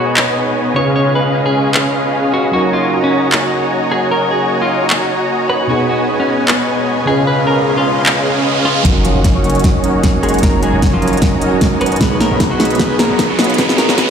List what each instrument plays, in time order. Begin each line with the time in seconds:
Already playing: tine electric piano B2 B3 D#4 G#4, string section B2 G#3 D#4 F#4, supersaw synth B3 B4 C#5 D#5 G#5, clean electric guitar F#4
0.17 clap
0.74 tine electric piano C#3 C#4 F4, supersaw synth C#4 G#4 B4 D#5 F5, string section C#4 F4, clean electric guitar C#5
0.78 tine electric piano B4
0.96 clean electric guitar C#5
1.15 clean electric guitar B4
1.46 clean electric guitar G#4
1.74 clap
2.34 clean electric guitar F#4
2.52 string section C#3 A#3 D#4 F#4, tine electric piano F#3 C#4 D#4, clean electric guitar F#4, supersaw synth F#4 C#5 D#5 G#5 A#5
2.56 tine electric piano A#4
2.73 clean electric guitar F4
3.04 clean electric guitar C#4
3.32 clap
3.92 clean electric guitar G#4
4.11 clean electric guitar A#4
4.31 clean electric guitar G#4
4.62 clean electric guitar F4
4.90 clap
5.50 clean electric guitar B4
5.68 tine electric piano B2 B3 D#4, string section B2 G#3, supersaw synth B3 B4 C#5 D#5 G#5, clean electric guitar F#4, riser
5.72 tine electric piano G#4
5.89 clean electric guitar F#4
6.20 clean electric guitar C#4
6.48 clap
7.06 tine electric piano C#3 C#4 F4, string section G#3 C#4 F4, supersaw synth C#4 G#4 B4 D#5 F5, clean electric guitar G#4
7.10 tine electric piano B4
7.27 clean electric guitar B4
7.47 clean electric guitar A#4
7.78 clean electric guitar F4
8.06 clap
8.65 clean electric guitar F4
8.83 808-style bass F#1, string section D#3 A#3 C#4 F#4, tine electric piano F#3 C#4 D#4, clean electric guitar F#3 F#4, supersaw synth F#4 C#5 D#5 G#5 A#5, kick, snare, closed hi-hat, riser
8.87 tine electric piano A#4
9.05 clean electric guitar F3 F4, closed hi-hat
9.15 808-style bass F#1, supersaw synth F#4 C#5 D#5 G#5 C#6
9.24 kick, snare, closed hi-hat
9.35 clean electric guitar C#3 C#4
9.43 tine electric piano F#3 C#4 D#4 A#4, closed hi-hat
9.50 closed hi-hat
9.55 closed hi-hat
9.59 closed hi-hat
9.64 kick, snare, closed hi-hat
9.82 tine electric piano F#3 C#4 D#4 A#4, closed hi-hat
10.03 kick, snare, closed hi-hat
10.23 clean electric guitar G#3 G#4, closed hi-hat
10.29 closed hi-hat
10.34 closed hi-hat
10.39 tine electric piano F#3 C#4, closed hi-hat
10.43 808-style bass F#1, clean electric guitar A#3 A#4, tine electric piano D#4 A#4, supersaw synth F#4 C#5 D#5 G#5 A#5, kick, snare, closed hi-hat
10.62 clean electric guitar G#3 G#4, closed hi-hat
10.73 808-style bass F#1, supersaw synth F#4 C#5 D#5 G#5 A#5
10.82 kick, snare, closed hi-hat
10.93 clean electric guitar F3 F4
11.01 tine electric piano F#3 C#4 D#4 A#4, closed hi-hat
11.08 closed hi-hat
11.13 closed hi-hat
11.17 closed hi-hat
11.22 kick, snare, closed hi-hat
11.40 tine electric piano F#3 C#4 D#4 A#4, closed hi-hat
11.61 kick, snare, closed hi-hat
11.81 clean electric guitar B3 B4, closed hi-hat
11.86 closed hi-hat
11.92 closed hi-hat
11.96 tine electric piano B2 B3, closed hi-hat
12.01 808-style bass B1, string section G#3 B3, clean electric guitar B3 B4, supersaw synth B3 B4 C#5 D#5 G#5, tine electric piano D#4 G#4, kick, snare, closed hi-hat
12.20 clean electric guitar A#3 A#4, snare, closed hi-hat
12.31 808-style bass B1, supersaw synth B3 B4 C#5 D#5 B5
12.40 kick, snare, closed hi-hat
12.51 clean electric guitar F#3 F#4
12.59 tine electric piano B2 B3 D#4 G#4, snare, closed hi-hat
12.65 closed hi-hat
12.70 closed hi-hat
12.75 tine electric piano B2 B3, closed hi-hat
12.79 808-style bass B1, clean electric guitar B3 B4, supersaw synth B3 B4 C#5 D#5 G#5, tine electric piano D#4 G#4, kick, snare, closed hi-hat
12.99 clean electric guitar A#3 A#4, snare, closed hi-hat
13.10 808-style bass B1, supersaw synth B3 B4 C#5 D#5 B5
13.19 kick, snare, closed hi-hat
13.30 clean electric guitar F#3 F#4
13.38 tine electric piano B2 B3 D#4 G#4, string section C#3 F4, snare, closed hi-hat
13.44 closed hi-hat
13.50 closed hi-hat
13.54 tine electric piano B2, closed hi-hat
13.58 808-style bass C#2, tine electric piano B3 D#4 G#4, supersaw synth B3 B4 C#5 D#5 G#5, clean electric guitar B3 B4, kick, snare, closed hi-hat
13.69 snare
13.78 clean electric guitar A#3 A#4, snare, closed hi-hat
13.89 808-style bass C#2, supersaw synth B3 B4 C#5 D#5 B5, snare
13.96 808-style bass C#2, tine electric piano B2 B3 D#4, clean electric guitar B3 B4, supersaw synth B3 B4 C#5 D#5 G#5, kick, snare, closed hi-hat
14.00 tine electric piano G#4